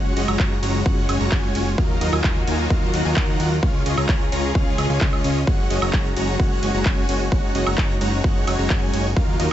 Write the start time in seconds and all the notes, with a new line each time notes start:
Already playing: F#1 G#3 C#4 F4 F#4 C#5 F#5
0.16 F#1 G#3 C#4 F#4 C#5 D#5, open hi-hat, ride
0.28 F#1 G#3 C#4 F#4 C#5 A#5, high woodblock
0.39 G#3 C#4 F#4 C#5 A#5, kick, clap
0.63 F#1 G#3 C#4 F#4 C#5 A#5, open hi-hat, ride
0.86 G#3 C#4 F#4 C#5 F#5, kick
1.09 F#1 G#3 C#4 F#4 C#5 G#5, open hi-hat, ride, high woodblock
1.20 F#1 G#3 C#4 F#4 C#5 A#5
1.32 G#3 C#4 F#4 C#5 G#5, kick, clap
1.55 F#1 G#3 C#4 F#4 C#5 G#5, open hi-hat, ride
1.78 D#2 D#3 F#3 A#3 D#4 F4 F#4 A#4 F5, kick
2.01 D#2 F#3 D#4 F4 A#4 D#5, open hi-hat, ride
2.13 D#2 F#3 D#4 F4 A#4 G#5, high woodblock
2.24 F#3 D#4 F4 A#4 G#5, kick, clap
2.47 D#2 F#3 D#4 F4 A#4 G#5, open hi-hat, ride
2.70 D#2 F#3 D#4 F4 A#4 F5, kick
2.94 D#2 F#3 D#4 F4 A#4 F#5, open hi-hat, ride
3.05 D#2 F#3 D#4 F4 A#4 G#5
3.16 D#2 F#3 D#4 F4 A#4 F#5, kick, clap
3.40 D#2 F#3 D#4 F4 A#4 F#5, open hi-hat, ride
3.63 C#2 C#3 G#3 C#4 F4 G#4 C#5 F5, kick
3.86 C#2 G#3 C#4 F4 C#5 D#5, open hi-hat, ride
3.97 C#2 G#3 C#4 F4 C#5 A#5, high woodblock
4.09 G#3 C#4 F4 C#5 A#5, kick, clap
4.32 C#2 G#3 C#4 F4 C#5 A#5, open hi-hat, ride
4.55 G#3 C#4 F4 C#5 F5, kick
4.78 C#2 G#3 C#4 F4 C#5 D#5, open hi-hat, ride, high woodblock
4.90 C#2 G#3 C#4 F4 C#5 G#5
5.01 G#3 C#4 F4 C#5 D#5, kick, clap
5.13 high woodblock
5.24 C#2 G#3 C#4 F4 C#5 D#5, open hi-hat, ride
5.47 F#1 G#3 C#4 F#4 C#5 F#5, kick
5.70 F#1 G#3 C#4 F#4 C#5 D#5, open hi-hat, ride
5.82 F#1 G#3 C#4 F#4 C#5 A#5, high woodblock
5.93 G#3 C#4 F#4 C#5 A#5, kick, clap
6.16 F#1 G#3 C#4 F#4 C#5 A#5, open hi-hat, ride
6.40 G#3 C#4 F#4 C#5 F#5, kick
6.63 F#1 G#3 C#4 F#4 C#5 G#5, open hi-hat, ride
6.74 F#1 G#3 C#4 F#4 C#5 A#5
6.85 G#3 C#4 F#4 C#5 G#5, kick, clap
7.09 F#1 G#3 C#4 F#4 C#5 G#5, open hi-hat, ride
7.32 F#1 G#3 C#4 D#4 F#4 C#5 F#5, kick
7.55 F#1 G#3 C#4 F#4 C#5 D#5, open hi-hat, ride
7.66 F#1 G#3 C#4 F#4 C#5 A#5, high woodblock
7.78 G#3 C#4 F#4 C#5 A#5, kick, clap
8.01 F#1 G#3 C#4 F#4 C#5 A#5, open hi-hat, ride
8.24 G#3 C#4 F#4 C#5 F#5, kick
8.47 F#1 G#3 C#4 F#4 C#5 G#5, open hi-hat, ride, high woodblock
8.59 F#1 G#3 C#4 F#4 C#5 A#5
8.70 G#3 C#4 F#4 C#5 G#5, kick, clap
8.93 F#1 G#3 C#4 F#4 C#5 G#5, open hi-hat, ride
9.16 D#2 D#3 F#3 A#3 D#4 F4 F#4 A#4 F5, kick
9.39 D#2 F#3 D#4 F4 A#4 D#5, open hi-hat, ride